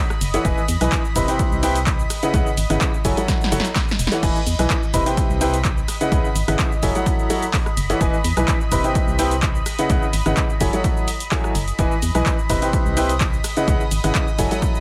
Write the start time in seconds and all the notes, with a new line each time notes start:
Already playing: D#5 B5
0.10 cross-stick, cabasa
0.21 F#1, open hi-hat, ride, cabasa
0.34 E3 E4 A4 C#5 F#5, closed hi-hat, cabasa
0.45 E1 E3 E4 B4 D#5 G#5, kick, closed hi-hat, cabasa
0.58 cabasa
0.68 E2, open hi-hat, ride, cabasa
0.81 B1 E3 E4 B4 D#5 G#5, cross-stick, closed hi-hat, cabasa
0.92 kick, clap, closed hi-hat, cabasa
1.05 cabasa
1.16 E1 C3 E4 B4 D#5 B5, kick, open hi-hat, ride, cabasa
1.28 C3 E4 B4 C5 G5, closed hi-hat, cabasa
1.39 kick, closed hi-hat, cabasa
1.52 C2, cabasa
1.63 C3 E4 B4 C5 G5, open hi-hat, ride, cabasa
1.75 closed hi-hat, cabasa
1.87 kick, clap, closed hi-hat, cabasa
1.99 cabasa
2.10 cross-stick, open hi-hat, ride, cabasa
2.23 C#3 E4 B4 D#5 F#5, closed hi-hat, cabasa
2.34 C#2 E4 B4 D#5 F#5, kick, closed hi-hat, cabasa
2.47 cabasa
2.57 G#1, open hi-hat, ride, cabasa
2.70 G#1 C#3 E4 B4 D#5 F#5, cross-stick, closed hi-hat, cabasa
2.81 kick, clap, closed hi-hat, cabasa
2.94 cabasa
3.05 F#1 F#3 E4 A4 C#5 G#5, kick, open hi-hat, ride, cabasa
3.17 F#3 E4 A4 C#5 F#5, closed hi-hat, cabasa
3.28 kick, snare, closed hi-hat, cabasa
3.41 snare, cabasa
3.52 F#1 F#3 E4 A4 C#5 F#5, open hi-hat, ride, cabasa
3.60 snare
3.65 closed hi-hat, cabasa
3.76 kick, snare, clap, open hi-hat, cabasa
3.88 snare, cabasa
3.99 E1, open hi-hat, ride, cabasa
4.07 snare
4.12 E3 E4 A4 C#5 F#5, closed hi-hat, cabasa
4.23 E1 E3 E4 B4 D#5 G#5 B5, kick, closed hi-hat, crash, cabasa
4.36 cabasa
4.47 E2, open hi-hat, ride, cabasa
4.59 B1 E3 E4 B4 D#5 G#5, cross-stick, closed hi-hat, cabasa
4.70 kick, clap, closed hi-hat, cabasa
4.83 cabasa
4.94 E1 C3 E4 B4 D#5 B5, kick, open hi-hat, ride, cabasa
5.06 C3 E4 B4 C5 G5, closed hi-hat, cabasa
5.17 kick, closed hi-hat, cabasa
5.30 C2, cabasa
5.41 C3 E4 B4 C5 G5, open hi-hat, ride, cabasa
5.54 closed hi-hat, cabasa
5.65 kick, clap, closed hi-hat, cabasa
5.78 cabasa
5.88 cross-stick, open hi-hat, ride, cabasa
6.01 C#3 E4 B4 D#5 F#5, closed hi-hat, cabasa
6.12 C#2 C#3 E4 B4 D#5 F#5, kick, closed hi-hat, cabasa
6.25 cabasa
6.35 G#1, open hi-hat, ride, cabasa
6.48 G#1 C#3 E4 B4 D#5 F#5, cross-stick, closed hi-hat, cabasa
6.59 kick, clap, closed hi-hat, cabasa
6.72 cabasa
6.83 F#1 F#3 E4 A4 C#5 G#5, kick, open hi-hat, ride, cabasa
6.95 F#3 E4 A4 C#5 F#5, closed hi-hat, cabasa
7.06 kick, closed hi-hat, cabasa
7.19 cabasa
7.30 F#3 E4 A4 C#5 F#5, open hi-hat, ride, cabasa
7.43 closed hi-hat, cabasa
7.54 kick, clap, open hi-hat, cabasa
7.66 cross-stick, cabasa
7.77 F#1, open hi-hat, ride, cabasa
7.90 E3 E4 A4 C#5 F#5, closed hi-hat, cabasa
8.01 E1 E3 E4 B4 D#5 G#5, kick, closed hi-hat, cabasa
8.14 cabasa
8.24 E2, open hi-hat, ride, cabasa
8.37 B1 E3 E4 B4 D#5 G#5, cross-stick, closed hi-hat, cabasa
8.48 kick, clap, closed hi-hat, cabasa
8.61 cabasa
8.72 E1 C3 E4 B4 D#5 B5, kick, open hi-hat, ride, cabasa
8.84 C3 E4 B4 C5 G5, closed hi-hat, cabasa
8.95 kick, closed hi-hat, cabasa
9.08 C2, cabasa
9.19 C3 E4 B4 C5 G5, open hi-hat, ride, cabasa
9.31 closed hi-hat, cabasa
9.42 kick, clap, closed hi-hat, cabasa
9.55 cabasa
9.66 cross-stick, open hi-hat, ride, cabasa
9.79 C#3 E4 B4 D#5 F#5, closed hi-hat, cabasa
9.90 C#2 C#3 E4 B4 D#5 F#5, kick, closed hi-hat, cabasa
10.02 cabasa
10.13 G#1, open hi-hat, ride, cabasa
10.26 G#1 C#3 E4 B4 D#5 F#5, cross-stick, closed hi-hat, cabasa
10.37 kick, clap, closed hi-hat, cabasa
10.50 cabasa
10.61 F#1 F#3 E4 A4 C#5 G#5, kick, open hi-hat, ride, cabasa
10.73 F#3 E4 A4 C#5 F#5, closed hi-hat, cabasa
10.84 kick, closed hi-hat, cabasa
10.97 cabasa
11.08 open hi-hat, ride, cabasa
11.20 closed hi-hat, cabasa
11.31 F#3 E4 A4 C#5 G#5, kick, clap, open hi-hat, cabasa
11.44 cross-stick, cabasa
11.55 F#1, open hi-hat, ride, cabasa
11.68 closed hi-hat, cabasa
11.79 E1 E3 E4 B4 D#5 G#5 B5, kick, closed hi-hat, cabasa
11.91 cabasa
12.02 E2, open hi-hat, ride, cabasa
12.15 B1 E3 E4 B4 D#5 G#5, cross-stick, closed hi-hat, cabasa
12.26 kick, clap, closed hi-hat, cabasa
12.39 cabasa
12.50 E1 C3 E4 B4 D#5 B5, kick, open hi-hat, ride, cabasa
12.62 C3 E4 B4 C5 G5, closed hi-hat, cabasa
12.73 kick, closed hi-hat, cabasa
12.86 C2, cabasa
12.97 C3 E4 B4 C5 G5, open hi-hat, ride, cabasa
13.09 closed hi-hat, cabasa
13.20 kick, clap, closed hi-hat, cabasa
13.33 cabasa
13.44 cross-stick, open hi-hat, ride, cabasa
13.57 C#3 E4 B4 D#5 F#5, closed hi-hat, cabasa
13.68 C#2 C#3 E4 B4 D#5 F#5, kick, closed hi-hat, cabasa
13.80 cabasa
13.91 G#1, open hi-hat, ride, cabasa
14.04 G#1 C#3 E4 B4 D#5 F#5, cross-stick, closed hi-hat, cabasa
14.15 kick, clap, closed hi-hat, cabasa
14.28 cabasa
14.39 F#1 F#3 E4 A4 C#5 G#5, kick, open hi-hat, ride, cabasa
14.51 F#3 E4 A4 C#5 F#5, closed hi-hat, cabasa
14.62 kick, closed hi-hat, cabasa
14.75 cabasa